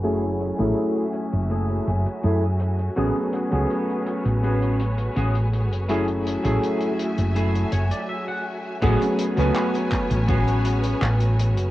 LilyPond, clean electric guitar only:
\new Staff \with { instrumentName = "Clean electric guitar" } { \time 4/4 \key a \major \tempo 4 = 82 <a e' gis'>16 r8 <a e' gis'>8. r8 <a e' gis'>8 r8 <a e' gis'>16 r8. | <b cis' fis' gis'>16 r8 <b cis' fis' gis'>8. r8 <b cis' fis' gis'>8 r8 <b cis' fis' gis'>16 r8. | <a e' gis'>16 r8 <a e' gis'>8. r8 <a e' gis'>8 cis''16 d''16 e''16 fis''8. | <b cis' fis' gis'>16 r8 <b cis' fis' b'>8 r8. <b cis' fis' gis'>4 r4 | }